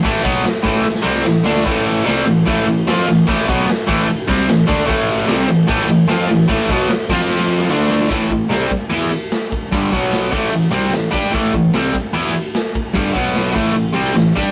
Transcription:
<<
  \new Staff \with { instrumentName = "Overdriven electric guitar" } { \clef bass \time 4/4 \key a \minor \tempo 4 = 149 <a, e a>8 <b, fis b>8 r8 <a, e a>8 r8 <c g c'>8 <a, e>8 <d a d'>8 | <a, e a>4 <c g c'>8 <a, e>8 <a, e a>8 <a, e>8 <f c' f'>8 <a, e>8 | <a, e a>8 <b, fis b>8 r8 <a, e a>8 r8 <c g c'>8 <a, e>8 <d a d'>8 | <a, e a>4 <c g c'>8 <a, e>8 <a, e a>8 <a, e>8 <f c' f'>8 <a, e>8 |
<a, e a>8 <b, fis b>8 r8 <f c' f'>4. <d a d'>4 | <a, e a>8 <a, e>8 <c g c'>8 r8 <e b e'>8 r4. | <g, d g>8 <b, fis b>4 <a, e a>8 <a, e>8 <c g c'>8 <a, e>8 <g d' g'>8 | <a, e a>8 <a, e>8 <c g c'>8 r8 <e b e'>8 r4. |
<g, d g>8 <b, fis b>4 <a, e a>8 <a, e>8 <c g c'>8 <a, e>8 <g d' g'>8 | }
  \new Staff \with { instrumentName = "Picked electric bass" } { \clef bass \time 4/4 \key a \minor a,,8 b,,8 r8 a,,8 r8 c,8 a,,8 d,8 | a,,4 c,8 a,,8 a,,8 a,,8 f,8 a,,8 | a,,8 b,,8 r8 a,,8 r8 c,8 a,,8 d,8 | a,,4 c,8 a,,8 a,,8 a,,8 f,8 a,,8 |
a,,8 b,,8 r8 f,4. d,4 | a,,8 a,,8 c,8 r8 e,8 r4. | g,,8 b,,4 a,,8 a,,8 c,8 a,,8 g,8 | a,,8 a,,8 c,8 r8 e,8 r4. |
g,,8 b,,4 a,,8 a,,8 c,8 a,,8 g,8 | }
  \new DrumStaff \with { instrumentName = "Drums" } \drummode { \time 4/4 <bd cymr>8 <bd cymr>8 <cymr sn>8 <bd cymr>8 sn16 sn8 sn16 sn8 sn16 sn16 | <cymc bd>8 cymr8 <cymr sn>8 cymr8 <bd cymr>8 cymr8 <cymr sn>8 cymr8 | <bd cymr>8 <bd cymr>8 <cymr sn>8 <bd cymr>8 cymr8 <bd cymr>8 <cymr sn>8 <bd cymr>8 | <bd cymr>8 cymr8 <cymr sn>8 cymr8 <bd cymr>8 cymr8 <cymr sn>8 cymr8 |
<bd cymr>8 <bd cymr>8 <cymr sn>8 <cymc bd>8 sn16 sn8 sn16 sn8 sn16 sn16 | <bd cymr>8 <bd cymr>8 <cymr sn>8 <bd cymr>8 cymr8 cymr8 <cymr sn>8 <bd cymr>8 | <bd cymr>8 <bd cymr>8 <cymr sn>8 <bd cymr>8 cymr8 cymr8 <cymr sn>8 <bd cymr>8 | <bd cymr>8 <bd cymr>8 <cymr sn>8 <bd cymr>8 cymr8 cymr8 <cymr sn>8 <bd cymr>8 |
<bd cymr>8 <bd cymr>8 <cymr sn>8 <bd cymr>8 cymr8 cymr8 <cymr sn>8 <bd cymr>8 | }
>>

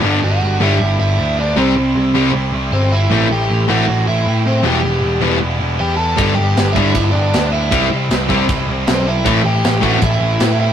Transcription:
<<
  \new Staff \with { instrumentName = "Overdriven electric guitar" } { \time 4/4 \key g \major \tempo 4 = 156 <d' d''>8 <fis' fis''>4 <e' e''>4 <e' e''>4 <d' d''>8 | <c' c''>2 r4 <c' c''>8 <e' e''>8~ | <e' e''>8 <g' g''>4 <fis' fis''>4 <e' e''>4 <c' c''>8 | <g' g''>2 r4 <g' g''>8 <a' a''>8~ |
<a' a''>8 <g' g''>4 <e' e''>4 <d' d''>4 <e' e''>8~ | <e' e''>8 r2 r8 <c' c''>8 <e' e''>8~ | <e' e''>8 <g' g''>4 <fis' fis''>8 <e' e''>4. <e' e''>8 | }
  \new Staff \with { instrumentName = "Distorted electric guitar" } { \time 4/4 \key g \major <g, d g b d' g'>8 r4 <g, d g b d' g'>8 r2 | <c g c' e'>8 r4 <c g c' e'>8 r2 | <a, e a c' e'>8 r4 <a, e a c' e'>8 r2 | <e g b e'>8 r4 <e g b e'>8 r2 |
<g, d g b d'>8 r4 <g, d g b d'>8 r2 | <c g c' e'>8 r4 <c g c' e'>8 r2 | <a, e a c' e'>8 r4 <a, e a c' e'>8 r2 | }
  \new Staff \with { instrumentName = "Distorted electric guitar" } { \time 4/4 \key g \major <g, d g b d' g'>8 <g, d g b d' g'>8 <g, d g b d' g'>8 <g, d g b d' g'>8 <g, d g b d' g'>8 <g, d g b d' g'>8 <g, d g b d' g'>8 <g, d g b d' g'>8 | <c g c' e'>8 <c g c' e'>8 <c g c' e'>8 <c g c' e'>8 <c g c' e'>8 <c g c' e'>8 <c g c' e'>8 <c g c' e'>8 | <a, e a c' e'>8 <a, e a c' e'>8 <a, e a c' e'>8 <a, e a c' e'>8 <a, e a c' e'>8 <a, e a c' e'>8 <a, e a c' e'>8 <a, e a c' e'>8 | <e g b e'>8 <e g b e'>8 <e g b e'>8 <e g b e'>8 <e g b e'>8 <e g b e'>8 <e g b e'>8 <e g b e'>8 |
<g, d g b d'>8 <g, d g b d'>8 <g, d g b d'>8 <g, d g b d'>8 <g, d g b d'>8 <g, d g b d'>8 <g, d g b d'>8 <g, d g b d'>8 | <c g c' e'>8 <c g c' e'>8 <c g c' e'>8 <c g c' e'>8 <c g c' e'>8 <c g c' e'>8 <c g c' e'>8 <c g c' e'>8 | <a, e a c' e'>8 <a, e a c' e'>8 <a, e a c' e'>8 <a, e a c' e'>8 <a, e a c' e'>8 <a, e a c' e'>8 <a, e a c' e'>8 <a, e a c' e'>8 | }
  \new Staff \with { instrumentName = "Distorted electric guitar" } { \clef bass \time 4/4 \key g \major <g, d g>8 r4 <g, d g>8 r2 | <c g c'>8 r4 <c g c'>8 r2 | <a, e a>8 r4 <a, e a>8 r2 | <e, b, e>8 r4 <e, b, e>8 r2 |
<g, d g>8 r4 <g, d g>8 r2 | <c g c'>8 r4 <c g c'>8 r2 | <a, e a>8 r4 <a, e a>8 r2 | }
  \new Staff \with { instrumentName = "Picked electric bass" } { \clef bass \time 4/4 \key g \major g,,8 g,,8 g,,8 g,,8 g,,8 g,,8 d,4 | c,8 c,8 c,8 c,8 c,8 c,8 g,,4 | a,,8 a,,8 a,,8 a,,8 a,,8 a,,8 a,4 | e,,8 e,,8 e,,8 e,,8 e,,8 e,,8 e,4 |
g,,8 g,,8 g,,8 g,,8 g,,8 g,,8 d,4 | c,8 c,8 c,8 c,8 c,8 c,8 b,,4 | a,,8 a,,8 a,,8 a,,8 a,,8 a,,8 a,4 | }
  \new DrumStaff \with { instrumentName = "Drums" } \drummode { \time 4/4 r4 r4 r4 r4 | r4 r4 r4 r4 | r4 r4 r4 r4 | r4 r4 r4 r4 |
<cymc bd>4 <cymc sn>8 bd8 <cymc bd>4 <cymc sn>4 | <cymc bd>4 <cymc sn>8 bd8 <cymc bd>4 <cymc sn>4 | <cymc bd>4 <cymc sn>8 bd8 <cymc bd>4 <cymc sn>4 | }
>>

